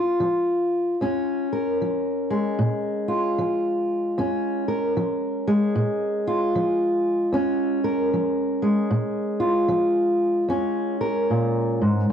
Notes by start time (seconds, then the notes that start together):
Already playing: A#2 F4
0.20 F3
1.01 F2 C#4
1.52 A#4
1.81 F3
2.30 G#3
2.59 A#2
3.08 F4
3.38 F3
4.18 F2 C#4
4.68 A#4
4.97 F3
5.48 G#3
5.75 A#2
6.27 F4
6.55 F3
7.33 F2 C#4
7.84 A#4
8.14 F3
8.62 G#3
8.91 A#2
9.40 F4
9.68 F3
10.48 F2 C#4
11.01 A#4
11.30 A#2
11.82 G#2